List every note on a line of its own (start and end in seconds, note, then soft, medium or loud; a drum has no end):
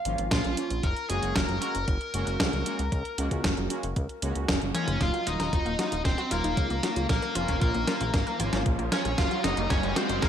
0.00 0.37 F5 loud
0.05 0.16 G#1 medium
0.05 0.54 F3 medium
0.05 0.54 A#3 medium
0.05 0.54 C#4 medium
0.05 0.54 F4 loud
0.05 closed hi-hat medium
0.18 0.29 G#1 medium
0.18 closed hi-hat medium
0.31 0.42 A#1 loud
0.31 0.85 F4 medium
0.31 kick loud
0.31 snare loud
0.31 closed hi-hat medium
0.44 0.55 A#1 medium
0.44 closed hi-hat soft
0.57 0.73 F3 medium
0.57 0.73 A#3 medium
0.57 0.73 C#4 medium
0.57 0.73 F4 loud
0.57 closed hi-hat medium
0.70 0.81 A#1 medium
0.70 closed hi-hat soft
0.83 0.94 F#1 loud
0.83 1.09 A#4 loud
0.83 kick loud
0.83 closed hi-hat medium
0.96 closed hi-hat soft
1.09 1.20 F#1 loud
1.09 1.59 G#3 medium
1.09 1.59 A#3 medium
1.09 1.59 C#4 medium
1.09 1.59 F#4 loud
1.09 1.35 G#4 medium
1.09 closed hi-hat medium
1.23 1.33 F#1 medium
1.23 closed hi-hat soft
1.36 1.46 F#1 loud
1.36 1.60 A#4 medium
1.36 kick loud
1.36 snare loud
1.36 closed hi-hat medium
1.49 1.59 F#1 medium
1.49 closed hi-hat soft
1.62 1.77 G#3 medium
1.62 1.77 A#3 medium
1.62 1.77 C#4 medium
1.62 1.77 F#4 loud
1.62 4.45 A#4 medium
1.62 closed hi-hat medium
1.75 1.86 F#1 medium
1.75 closed hi-hat medium
1.88 1.99 F#1 loud
1.88 kick loud
1.88 closed hi-hat medium
2.01 closed hi-hat soft
2.14 2.25 F#1 medium
2.14 2.63 G#3 loud
2.14 2.63 A#3 medium
2.14 2.63 C#4 medium
2.14 2.63 F#4 loud
2.14 closed hi-hat medium
2.27 2.38 F#1 medium
2.27 closed hi-hat medium
2.40 2.51 C#2 loud
2.40 kick loud
2.40 snare loud
2.40 closed hi-hat medium
2.53 2.64 C#2 medium
2.53 closed hi-hat soft
2.66 2.81 G#3 medium
2.66 2.81 A#3 medium
2.66 2.81 C#4 medium
2.66 2.81 F#4 loud
2.66 closed hi-hat medium
2.79 2.90 C#2 medium
2.79 closed hi-hat medium
2.92 3.03 C#2 loud
2.92 kick loud
2.92 closed hi-hat medium
3.05 closed hi-hat soft
3.18 3.29 C#2 medium
3.18 3.67 G#3 medium
3.18 3.67 A#3 medium
3.18 3.67 C#4 medium
3.18 3.67 F#4 loud
3.18 closed hi-hat medium
3.31 3.42 C#2 medium
3.31 kick medium
3.31 closed hi-hat medium
3.44 3.55 F#1 loud
3.44 kick loud
3.44 snare loud
3.44 closed hi-hat medium
3.57 3.68 F#1 medium
3.57 closed hi-hat soft
3.70 3.86 G#3 medium
3.70 3.86 A#3 medium
3.70 3.86 C#4 medium
3.70 3.86 F#4 loud
3.70 closed hi-hat loud
3.83 3.94 F#1 medium
3.83 closed hi-hat medium
3.96 4.07 C#2 loud
3.96 kick loud
3.96 closed hi-hat medium
4.09 closed hi-hat soft
4.22 4.33 C#2 medium
4.22 4.72 G#3 medium
4.22 4.72 A#3 medium
4.22 4.72 C#4 medium
4.22 4.72 F#4 medium
4.22 closed hi-hat medium
4.35 4.46 C#2 medium
4.35 closed hi-hat medium
4.48 4.59 F#1 loud
4.48 kick loud
4.48 snare loud
4.48 closed hi-hat medium
4.62 4.72 F#1 medium
4.62 closed hi-hat soft
4.75 5.24 F#3 medium
4.75 5.24 A#3 medium
4.75 4.99 C#4 medium
4.75 5.24 D#4 medium
4.75 5.24 F4 loud
4.75 5.02 C#5 loud
4.75 closed hi-hat medium
4.75 high tom medium
4.88 4.98 F#1 medium
4.88 closed hi-hat medium
4.88 mid tom medium
5.01 5.12 D#1 loud
5.01 5.26 F4 medium
5.01 5.28 F5 loud
5.01 kick loud
5.01 snare soft
5.01 closed hi-hat medium
5.01 riser medium
5.14 5.21 F#4 medium
5.14 closed hi-hat soft
5.27 5.38 D#1 medium
5.27 5.76 F#3 medium
5.27 5.76 A#3 medium
5.27 5.76 D#4 medium
5.27 6.01 D#4 medium
5.27 5.31 F4 loud
5.27 5.76 F4 loud
5.27 6.01 D#5 loud
5.27 closed hi-hat medium
5.40 5.51 D#1 medium
5.40 5.47 D#4 loud
5.40 snare soft
5.40 closed hi-hat medium
5.53 5.64 D#1 loud
5.53 kick loud
5.53 closed hi-hat medium
5.66 5.77 D#1 medium
5.66 5.71 A#3 loud
5.66 closed hi-hat soft
5.79 5.94 F#3 medium
5.79 5.94 A#3 medium
5.79 5.94 D#4 medium
5.79 5.94 F4 loud
5.79 5.90 F#4 loud
5.79 snare soft
5.79 closed hi-hat medium
5.92 6.03 D#1 medium
5.92 5.97 F4 medium
5.92 closed hi-hat medium
6.05 6.16 D#1 loud
6.05 6.30 C4 medium
6.05 6.32 C5 loud
6.05 kick loud
6.05 snare medium
6.05 closed hi-hat medium
6.18 6.26 F#4 medium
6.18 closed hi-hat soft
6.31 6.42 D#1 medium
6.31 6.80 F#3 loud
6.31 6.80 A#3 medium
6.31 7.06 A#3 medium
6.31 6.80 D#4 medium
6.31 6.80 F4 loud
6.31 6.36 F4 loud
6.31 7.06 A#4 medium
6.31 closed hi-hat medium
6.44 6.55 D#1 medium
6.44 6.52 D#4 loud
6.44 closed hi-hat medium
6.57 6.68 C#2 loud
6.57 kick loud
6.57 closed hi-hat medium
6.70 6.81 C#2 medium
6.70 6.75 A#3 loud
6.70 closed hi-hat soft
6.83 6.99 F#3 loud
6.83 6.99 A#3 medium
6.83 6.99 D#4 medium
6.83 6.99 F4 loud
6.83 6.95 F#4 loud
6.83 snare medium
6.83 closed hi-hat medium
6.96 7.07 C#2 medium
6.96 7.01 F4 medium
6.96 closed hi-hat medium
7.09 7.20 A#1 loud
7.09 7.58 A#3 medium
7.09 7.60 A#4 medium
7.09 kick loud
7.09 snare medium
7.09 closed hi-hat medium
7.22 7.30 A#4 medium
7.22 closed hi-hat soft
7.35 7.46 F1 loud
7.35 7.85 F3 loud
7.35 7.85 A#3 medium
7.35 7.85 C#4 medium
7.35 7.40 F4 loud
7.35 7.85 F4 loud
7.35 closed hi-hat medium
7.48 7.59 F1 medium
7.48 7.56 C#4 loud
7.48 kick medium
7.48 closed hi-hat soft
7.62 7.72 A#1 loud
7.62 8.62 A#3 medium
7.62 8.62 A#4 medium
7.62 kick loud
7.62 closed hi-hat medium
7.74 7.85 A#1 medium
7.74 7.79 A#3 loud
7.74 closed hi-hat soft
7.88 8.03 F3 medium
7.88 8.03 A#3 medium
7.88 8.03 C#4 medium
7.88 8.03 F4 loud
7.88 7.99 A#4 loud
7.88 snare medium
7.88 closed hi-hat medium
8.01 8.12 A#1 medium
8.01 8.05 F4 medium
8.01 closed hi-hat medium
8.14 8.25 G#1 loud
8.14 kick loud
8.14 snare medium
8.14 closed hi-hat medium
8.27 8.35 A#4 medium
8.27 closed hi-hat soft
8.40 8.51 G#1 medium
8.40 8.89 F3 medium
8.40 8.89 A#3 medium
8.40 8.89 C#4 medium
8.40 8.89 F4 loud
8.40 8.44 F4 loud
8.40 closed hi-hat medium
8.53 8.64 G#1 medium
8.53 8.61 C#4 loud
8.53 snare medium
8.53 closed hi-hat medium
8.66 8.77 A#1 loud
8.66 kick loud
8.66 closed hi-hat medium
8.79 8.90 A#1 medium
8.79 8.84 A#3 loud
8.79 closed hi-hat soft
8.92 9.07 F3 loud
8.92 9.07 A#3 medium
8.92 9.07 C#4 medium
8.92 9.17 C#4 medium
8.92 9.07 F4 loud
8.92 9.04 A#4 loud
8.92 9.16 C#5 loud
8.92 snare medium
8.92 closed hi-hat medium
9.05 9.16 A#1 medium
9.05 9.10 F4 medium
9.05 closed hi-hat soft
9.18 9.29 F#1 loud
9.18 9.43 F4 medium
9.18 9.44 F5 loud
9.18 kick loud
9.18 snare medium
9.18 closed hi-hat medium
9.31 9.39 F#4 medium
9.31 closed hi-hat soft
9.44 9.55 F#1 medium
9.44 9.93 G#3 loud
9.44 9.93 A#3 medium
9.44 9.93 C#4 medium
9.44 9.49 C#4 loud
9.44 9.69 D#4 medium
9.44 9.93 F#4 loud
9.44 9.68 D#5 loud
9.44 snare medium
9.44 closed hi-hat medium
9.57 9.68 F#1 medium
9.57 9.65 A#3 loud
9.57 closed hi-hat soft
9.70 9.81 F#1 loud
9.70 9.95 C#4 medium
9.70 9.96 C#5 loud
9.70 kick loud
9.70 snare medium
9.70 closed hi-hat soft
9.83 9.94 F#1 medium
9.83 9.88 G#3 loud
9.83 closed hi-hat soft
9.96 10.12 G#3 loud
9.96 10.12 A#3 medium
9.96 10.21 C4 medium
9.96 10.12 C#4 medium
9.96 10.12 F#4 loud
9.96 10.08 F#4 loud
9.96 10.22 C5 medium
9.96 snare medium
9.96 closed hi-hat medium
10.09 10.20 F#1 medium
10.09 10.14 C#4 medium
10.09 closed hi-hat medium
10.22 10.29 F#1 loud
10.22 10.29 A#3 medium
10.22 10.29 A#4 medium
10.22 kick loud
10.22 snare medium
10.22 closed hi-hat soft